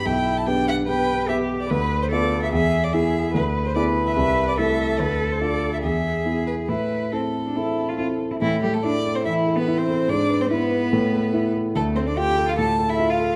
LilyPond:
<<
  \new Staff \with { instrumentName = "Violin" } { \time 4/4 \key g \major \tempo 4 = 145 g''8. a''16 g''8 fis''8 g''4 e''8. d''16 | \key a \minor b'8. c''16 d''8. e''16 e''8. d''16 e''4 | b'8. c''16 d''8. e''16 e''8. d''16 e''4 | b'8. c''16 d''8. e''16 e''4. b'8 |
b'4 a'2~ a'8 r8 | e'8 g'16 a'16 d''8. c''16 e''8. b'8 c''8. | d''8. c''16 b'2~ b'8 r8 | a'8 c''16 d''16 g''8. f''16 a''8. e''8 f''8. | }
  \new Staff \with { instrumentName = "Cello" } { \time 4/4 \key g \major e'4 d'4 b'4 g'4 | \key a \minor b'4 a'4 gis'4 gis'4 | b'4 b'2 a'4~ | a'2 gis'2 |
e'4 c'8. d'16 e'8. f'16 f'8. e'16 | e8 g16 a16 d'8. c'16 e'8. b8 c'8. | d'8. c'16 b2~ b8 r8 | a8 c'16 d'16 g'8. f'16 a'8. e'8 f'8. | }
  \new Staff \with { instrumentName = "Grand piano" } { \time 4/4 \key g \major b,,4 <b g' b'>4 <b g' b'>4 <b g' b'>4 | \key a \minor d,4 <b f' b'>4 e,4 <b e' gis'>4 | d,4 <b e' gis'>4 c,4 <a e' a'>4 | d,4 <d' f' a'>4 e,4 <b e' gis'>4 |
a,4 <c' e' a'>4 <c' e' a'>4 <c' e' a'>4 | a,8 a'8 e'8 a'8 e8 a'8 e'8 a'8 | gis,8 b'8 e'8 b'8 a,8 a'8 e'8 a'8 | d,8 a'8 f'8 a'8 a,8 a'8 f'8 a'8 | }
>>